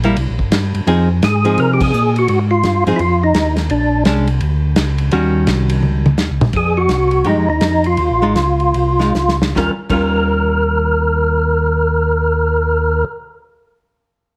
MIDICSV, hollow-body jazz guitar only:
0, 0, Header, 1, 2, 480
1, 0, Start_track
1, 0, Tempo, 353982
1, 1182, Time_signature, 4, 2, 24, 8
1, 9341, Tempo, 366748
1, 11261, Tempo, 397878
1, 12701, Tempo, 416667
1, 18251, End_track
2, 0, Start_track
2, 0, Title_t, "Hollow-body jazz guitar"
2, 0, Program_c, 0, 26
2, 57, Note_on_c, 0, 55, 74
2, 63, Note_on_c, 0, 58, 76
2, 68, Note_on_c, 0, 64, 76
2, 209, Note_off_c, 0, 55, 0
2, 212, Note_off_c, 0, 58, 0
2, 215, Note_off_c, 0, 64, 0
2, 1182, Note_on_c, 0, 53, 65
2, 1186, Note_on_c, 0, 60, 65
2, 1190, Note_on_c, 0, 63, 69
2, 1197, Note_on_c, 0, 68, 69
2, 1457, Note_off_c, 0, 53, 0
2, 1459, Note_off_c, 0, 60, 0
2, 1461, Note_off_c, 0, 63, 0
2, 1464, Note_off_c, 0, 68, 0
2, 1961, Note_on_c, 0, 53, 70
2, 1962, Note_on_c, 0, 60, 66
2, 1972, Note_on_c, 0, 63, 72
2, 1977, Note_on_c, 0, 68, 69
2, 2585, Note_off_c, 0, 53, 0
2, 2585, Note_off_c, 0, 60, 0
2, 2590, Note_off_c, 0, 63, 0
2, 2593, Note_off_c, 0, 68, 0
2, 3888, Note_on_c, 0, 53, 65
2, 3896, Note_on_c, 0, 60, 67
2, 3898, Note_on_c, 0, 63, 75
2, 3905, Note_on_c, 0, 68, 73
2, 4046, Note_off_c, 0, 53, 0
2, 4050, Note_off_c, 0, 60, 0
2, 4051, Note_off_c, 0, 63, 0
2, 4054, Note_off_c, 0, 68, 0
2, 5502, Note_on_c, 0, 56, 60
2, 5511, Note_on_c, 0, 61, 55
2, 5523, Note_on_c, 0, 62, 70
2, 5777, Note_off_c, 0, 56, 0
2, 5781, Note_off_c, 0, 61, 0
2, 5787, Note_off_c, 0, 62, 0
2, 6945, Note_on_c, 0, 51, 69
2, 6947, Note_on_c, 0, 55, 66
2, 6954, Note_on_c, 0, 66, 66
2, 6955, Note_on_c, 0, 61, 68
2, 8278, Note_off_c, 0, 51, 0
2, 8279, Note_off_c, 0, 55, 0
2, 8283, Note_off_c, 0, 61, 0
2, 8283, Note_off_c, 0, 66, 0
2, 9808, Note_on_c, 0, 53, 46
2, 9818, Note_on_c, 0, 56, 52
2, 9820, Note_on_c, 0, 63, 47
2, 9824, Note_on_c, 0, 67, 60
2, 10081, Note_off_c, 0, 53, 0
2, 10085, Note_off_c, 0, 56, 0
2, 10086, Note_off_c, 0, 63, 0
2, 10088, Note_off_c, 0, 67, 0
2, 11083, Note_on_c, 0, 56, 62
2, 11094, Note_on_c, 0, 63, 67
2, 11098, Note_on_c, 0, 65, 71
2, 11245, Note_off_c, 0, 56, 0
2, 11251, Note_off_c, 0, 63, 0
2, 11253, Note_off_c, 0, 65, 0
2, 12031, Note_on_c, 0, 56, 59
2, 12037, Note_on_c, 0, 63, 46
2, 12045, Note_on_c, 0, 65, 58
2, 12190, Note_off_c, 0, 56, 0
2, 12193, Note_off_c, 0, 63, 0
2, 12197, Note_off_c, 0, 65, 0
2, 12702, Note_on_c, 0, 51, 57
2, 12714, Note_on_c, 0, 55, 57
2, 12725, Note_on_c, 0, 61, 64
2, 12739, Note_on_c, 0, 65, 61
2, 12885, Note_off_c, 0, 51, 0
2, 12891, Note_off_c, 0, 55, 0
2, 12897, Note_off_c, 0, 61, 0
2, 12904, Note_off_c, 0, 65, 0
2, 13100, Note_on_c, 0, 51, 50
2, 13112, Note_on_c, 0, 55, 54
2, 13125, Note_on_c, 0, 61, 64
2, 13136, Note_on_c, 0, 65, 64
2, 16764, Note_off_c, 0, 51, 0
2, 16776, Note_off_c, 0, 55, 0
2, 16789, Note_off_c, 0, 61, 0
2, 16801, Note_off_c, 0, 65, 0
2, 18251, End_track
0, 0, End_of_file